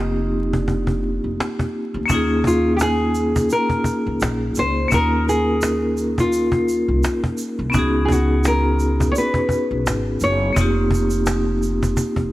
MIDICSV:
0, 0, Header, 1, 6, 480
1, 0, Start_track
1, 0, Tempo, 705882
1, 1423, Time_signature, 4, 2, 24, 8
1, 8378, End_track
2, 0, Start_track
2, 0, Title_t, "Nylon-string guitar"
2, 0, Program_c, 0, 24
2, 0, Note_on_c, 0, 63, 75
2, 399, Note_off_c, 0, 63, 0
2, 399, Note_on_c, 0, 62, 75
2, 918, Note_off_c, 0, 62, 0
2, 1680, Note_on_c, 0, 65, 77
2, 1876, Note_off_c, 0, 65, 0
2, 1880, Note_on_c, 0, 67, 62
2, 1912, Note_off_c, 0, 67, 0
2, 1920, Note_on_c, 0, 68, 91
2, 2395, Note_off_c, 0, 68, 0
2, 2397, Note_on_c, 0, 70, 87
2, 3118, Note_off_c, 0, 70, 0
2, 3121, Note_on_c, 0, 72, 107
2, 3356, Note_off_c, 0, 72, 0
2, 3359, Note_on_c, 0, 70, 98
2, 3595, Note_off_c, 0, 70, 0
2, 3598, Note_on_c, 0, 68, 88
2, 4216, Note_on_c, 0, 65, 76
2, 4224, Note_off_c, 0, 68, 0
2, 4900, Note_off_c, 0, 65, 0
2, 5475, Note_on_c, 0, 68, 58
2, 5510, Note_off_c, 0, 68, 0
2, 5522, Note_on_c, 0, 66, 73
2, 5759, Note_off_c, 0, 66, 0
2, 5763, Note_on_c, 0, 70, 91
2, 6196, Note_off_c, 0, 70, 0
2, 6199, Note_on_c, 0, 73, 77
2, 6232, Note_off_c, 0, 73, 0
2, 6243, Note_on_c, 0, 71, 90
2, 6926, Note_off_c, 0, 71, 0
2, 6960, Note_on_c, 0, 73, 104
2, 7199, Note_off_c, 0, 73, 0
2, 8378, End_track
3, 0, Start_track
3, 0, Title_t, "Vibraphone"
3, 0, Program_c, 1, 11
3, 0, Control_c, 1, 64, 127
3, 0, Note_on_c, 1, 58, 65
3, 0, Note_on_c, 1, 60, 60
3, 0, Note_on_c, 1, 63, 59
3, 0, Note_on_c, 1, 65, 58
3, 0, Note_on_c, 1, 67, 71
3, 1384, Note_off_c, 1, 58, 0
3, 1391, Note_off_c, 1, 60, 0
3, 1397, Note_on_c, 1, 58, 78
3, 1400, Note_off_c, 1, 63, 0
3, 1406, Note_off_c, 1, 65, 0
3, 1413, Note_on_c, 1, 61, 72
3, 1414, Note_off_c, 1, 67, 0
3, 1427, Note_on_c, 1, 63, 74
3, 1432, Control_c, 1, 64, 0
3, 1442, Note_on_c, 1, 65, 71
3, 1458, Note_on_c, 1, 68, 90
3, 1545, Control_c, 1, 64, 127
3, 3303, Note_off_c, 1, 58, 0
3, 3311, Note_off_c, 1, 61, 0
3, 3318, Note_off_c, 1, 63, 0
3, 3318, Note_on_c, 1, 58, 69
3, 3326, Note_off_c, 1, 65, 0
3, 3333, Note_off_c, 1, 68, 0
3, 3335, Note_on_c, 1, 61, 58
3, 3349, Note_on_c, 1, 63, 62
3, 3365, Note_on_c, 1, 65, 61
3, 3379, Note_on_c, 1, 70, 70
3, 5223, Note_off_c, 1, 58, 0
3, 5232, Note_off_c, 1, 61, 0
3, 5235, Note_on_c, 1, 59, 81
3, 5239, Note_off_c, 1, 63, 0
3, 5247, Note_off_c, 1, 65, 0
3, 5248, Note_on_c, 1, 61, 71
3, 5254, Note_off_c, 1, 70, 0
3, 5266, Note_on_c, 1, 63, 73
3, 5273, Control_c, 1, 64, 0
3, 5281, Note_on_c, 1, 66, 72
3, 5295, Note_on_c, 1, 68, 88
3, 5412, Control_c, 1, 64, 127
3, 7142, Note_off_c, 1, 59, 0
3, 7148, Note_off_c, 1, 61, 0
3, 7155, Note_on_c, 1, 58, 65
3, 7157, Note_off_c, 1, 63, 0
3, 7165, Note_off_c, 1, 66, 0
3, 7170, Note_on_c, 1, 60, 59
3, 7172, Note_off_c, 1, 68, 0
3, 7185, Note_on_c, 1, 63, 59
3, 7191, Control_c, 1, 64, 0
3, 7200, Note_on_c, 1, 65, 61
3, 7215, Note_on_c, 1, 67, 77
3, 7326, Control_c, 1, 64, 127
3, 8378, Note_off_c, 1, 58, 0
3, 8378, Note_off_c, 1, 60, 0
3, 8378, Note_off_c, 1, 63, 0
3, 8378, Note_off_c, 1, 65, 0
3, 8378, Note_off_c, 1, 67, 0
3, 8378, End_track
4, 0, Start_track
4, 0, Title_t, "Upright bass"
4, 0, Program_c, 2, 32
4, 0, Note_on_c, 2, 29, 95
4, 811, Note_off_c, 2, 29, 0
4, 842, Note_on_c, 2, 29, 76
4, 930, Note_off_c, 2, 29, 0
4, 1321, Note_on_c, 2, 38, 82
4, 1409, Note_off_c, 2, 38, 0
4, 1427, Note_on_c, 2, 39, 91
4, 2358, Note_off_c, 2, 39, 0
4, 2764, Note_on_c, 2, 37, 80
4, 2851, Note_off_c, 2, 37, 0
4, 2866, Note_on_c, 2, 34, 89
4, 3070, Note_off_c, 2, 34, 0
4, 3107, Note_on_c, 2, 37, 85
4, 3310, Note_off_c, 2, 37, 0
4, 3345, Note_on_c, 2, 39, 99
4, 4652, Note_off_c, 2, 39, 0
4, 4680, Note_on_c, 2, 36, 81
4, 4769, Note_off_c, 2, 36, 0
4, 5160, Note_on_c, 2, 36, 86
4, 5248, Note_off_c, 2, 36, 0
4, 5265, Note_on_c, 2, 37, 96
4, 6197, Note_off_c, 2, 37, 0
4, 6601, Note_on_c, 2, 35, 75
4, 6689, Note_off_c, 2, 35, 0
4, 6708, Note_on_c, 2, 32, 84
4, 6910, Note_off_c, 2, 32, 0
4, 6943, Note_on_c, 2, 30, 84
4, 7148, Note_off_c, 2, 30, 0
4, 7185, Note_on_c, 2, 29, 99
4, 8117, Note_off_c, 2, 29, 0
4, 8272, Note_on_c, 2, 29, 84
4, 8378, Note_off_c, 2, 29, 0
4, 8378, End_track
5, 0, Start_track
5, 0, Title_t, "Cajon"
5, 215, Note_on_c, 9, 38, 39
5, 283, Note_off_c, 9, 38, 0
5, 363, Note_on_c, 9, 36, 84
5, 431, Note_off_c, 9, 36, 0
5, 461, Note_on_c, 9, 36, 79
5, 529, Note_off_c, 9, 36, 0
5, 592, Note_on_c, 9, 36, 83
5, 660, Note_off_c, 9, 36, 0
5, 701, Note_on_c, 9, 38, 33
5, 769, Note_off_c, 9, 38, 0
5, 954, Note_on_c, 9, 38, 101
5, 1022, Note_off_c, 9, 38, 0
5, 1084, Note_on_c, 9, 36, 93
5, 1152, Note_off_c, 9, 36, 0
5, 1176, Note_on_c, 9, 38, 34
5, 1244, Note_off_c, 9, 38, 0
5, 1426, Note_on_c, 9, 36, 116
5, 1494, Note_off_c, 9, 36, 0
5, 1660, Note_on_c, 9, 36, 87
5, 1728, Note_off_c, 9, 36, 0
5, 1910, Note_on_c, 9, 38, 109
5, 1978, Note_off_c, 9, 38, 0
5, 2139, Note_on_c, 9, 38, 39
5, 2207, Note_off_c, 9, 38, 0
5, 2284, Note_on_c, 9, 36, 99
5, 2352, Note_off_c, 9, 36, 0
5, 2384, Note_on_c, 9, 38, 45
5, 2452, Note_off_c, 9, 38, 0
5, 2513, Note_on_c, 9, 36, 82
5, 2581, Note_off_c, 9, 36, 0
5, 2613, Note_on_c, 9, 36, 81
5, 2681, Note_off_c, 9, 36, 0
5, 2872, Note_on_c, 9, 38, 110
5, 2940, Note_off_c, 9, 38, 0
5, 3091, Note_on_c, 9, 38, 34
5, 3159, Note_off_c, 9, 38, 0
5, 3345, Note_on_c, 9, 36, 111
5, 3413, Note_off_c, 9, 36, 0
5, 3827, Note_on_c, 9, 38, 104
5, 3895, Note_off_c, 9, 38, 0
5, 4053, Note_on_c, 9, 38, 42
5, 4121, Note_off_c, 9, 38, 0
5, 4202, Note_on_c, 9, 36, 92
5, 4270, Note_off_c, 9, 36, 0
5, 4301, Note_on_c, 9, 38, 44
5, 4369, Note_off_c, 9, 38, 0
5, 4431, Note_on_c, 9, 36, 89
5, 4499, Note_off_c, 9, 36, 0
5, 4542, Note_on_c, 9, 38, 34
5, 4610, Note_off_c, 9, 38, 0
5, 4790, Note_on_c, 9, 38, 113
5, 4858, Note_off_c, 9, 38, 0
5, 4921, Note_on_c, 9, 36, 94
5, 4989, Note_off_c, 9, 36, 0
5, 5013, Note_on_c, 9, 38, 36
5, 5081, Note_off_c, 9, 38, 0
5, 5264, Note_on_c, 9, 36, 118
5, 5332, Note_off_c, 9, 36, 0
5, 5498, Note_on_c, 9, 36, 93
5, 5566, Note_off_c, 9, 36, 0
5, 5747, Note_on_c, 9, 38, 117
5, 5815, Note_off_c, 9, 38, 0
5, 5976, Note_on_c, 9, 38, 41
5, 6044, Note_off_c, 9, 38, 0
5, 6123, Note_on_c, 9, 36, 99
5, 6191, Note_off_c, 9, 36, 0
5, 6222, Note_on_c, 9, 38, 43
5, 6290, Note_off_c, 9, 38, 0
5, 6351, Note_on_c, 9, 36, 92
5, 6419, Note_off_c, 9, 36, 0
5, 6452, Note_on_c, 9, 36, 85
5, 6520, Note_off_c, 9, 36, 0
5, 6711, Note_on_c, 9, 38, 110
5, 6779, Note_off_c, 9, 38, 0
5, 6931, Note_on_c, 9, 38, 36
5, 6999, Note_off_c, 9, 38, 0
5, 7183, Note_on_c, 9, 36, 122
5, 7251, Note_off_c, 9, 36, 0
5, 7417, Note_on_c, 9, 36, 98
5, 7485, Note_off_c, 9, 36, 0
5, 7663, Note_on_c, 9, 38, 109
5, 7731, Note_off_c, 9, 38, 0
5, 7894, Note_on_c, 9, 38, 41
5, 7962, Note_off_c, 9, 38, 0
5, 8042, Note_on_c, 9, 36, 94
5, 8110, Note_off_c, 9, 36, 0
5, 8138, Note_on_c, 9, 36, 89
5, 8206, Note_off_c, 9, 36, 0
5, 8270, Note_on_c, 9, 36, 85
5, 8338, Note_off_c, 9, 36, 0
5, 8378, End_track
6, 0, Start_track
6, 0, Title_t, "Drums"
6, 1423, Note_on_c, 9, 82, 69
6, 1491, Note_off_c, 9, 82, 0
6, 1684, Note_on_c, 9, 82, 54
6, 1752, Note_off_c, 9, 82, 0
6, 1900, Note_on_c, 9, 82, 77
6, 1968, Note_off_c, 9, 82, 0
6, 2140, Note_on_c, 9, 82, 44
6, 2208, Note_off_c, 9, 82, 0
6, 2285, Note_on_c, 9, 82, 48
6, 2353, Note_off_c, 9, 82, 0
6, 2381, Note_on_c, 9, 82, 64
6, 2449, Note_off_c, 9, 82, 0
6, 2621, Note_on_c, 9, 82, 49
6, 2689, Note_off_c, 9, 82, 0
6, 2860, Note_on_c, 9, 82, 72
6, 2928, Note_off_c, 9, 82, 0
6, 3096, Note_on_c, 9, 82, 57
6, 3164, Note_off_c, 9, 82, 0
6, 3341, Note_on_c, 9, 82, 71
6, 3409, Note_off_c, 9, 82, 0
6, 3598, Note_on_c, 9, 82, 52
6, 3666, Note_off_c, 9, 82, 0
6, 3819, Note_on_c, 9, 82, 78
6, 3887, Note_off_c, 9, 82, 0
6, 4062, Note_on_c, 9, 82, 43
6, 4130, Note_off_c, 9, 82, 0
6, 4207, Note_on_c, 9, 82, 48
6, 4275, Note_off_c, 9, 82, 0
6, 4302, Note_on_c, 9, 82, 65
6, 4370, Note_off_c, 9, 82, 0
6, 4545, Note_on_c, 9, 82, 51
6, 4613, Note_off_c, 9, 82, 0
6, 4784, Note_on_c, 9, 82, 66
6, 4852, Note_off_c, 9, 82, 0
6, 5017, Note_on_c, 9, 82, 57
6, 5085, Note_off_c, 9, 82, 0
6, 5261, Note_on_c, 9, 82, 66
6, 5329, Note_off_c, 9, 82, 0
6, 5521, Note_on_c, 9, 82, 54
6, 5589, Note_off_c, 9, 82, 0
6, 5741, Note_on_c, 9, 82, 78
6, 5809, Note_off_c, 9, 82, 0
6, 5980, Note_on_c, 9, 82, 44
6, 6048, Note_off_c, 9, 82, 0
6, 6128, Note_on_c, 9, 82, 45
6, 6196, Note_off_c, 9, 82, 0
6, 6226, Note_on_c, 9, 82, 67
6, 6294, Note_off_c, 9, 82, 0
6, 6469, Note_on_c, 9, 82, 51
6, 6537, Note_off_c, 9, 82, 0
6, 6708, Note_on_c, 9, 82, 70
6, 6776, Note_off_c, 9, 82, 0
6, 6937, Note_on_c, 9, 82, 60
6, 7005, Note_off_c, 9, 82, 0
6, 7185, Note_on_c, 9, 82, 73
6, 7253, Note_off_c, 9, 82, 0
6, 7441, Note_on_c, 9, 82, 53
6, 7509, Note_off_c, 9, 82, 0
6, 7550, Note_on_c, 9, 82, 59
6, 7618, Note_off_c, 9, 82, 0
6, 7659, Note_on_c, 9, 82, 75
6, 7727, Note_off_c, 9, 82, 0
6, 7906, Note_on_c, 9, 82, 44
6, 7974, Note_off_c, 9, 82, 0
6, 8046, Note_on_c, 9, 82, 46
6, 8114, Note_off_c, 9, 82, 0
6, 8140, Note_on_c, 9, 82, 65
6, 8208, Note_off_c, 9, 82, 0
6, 8378, End_track
0, 0, End_of_file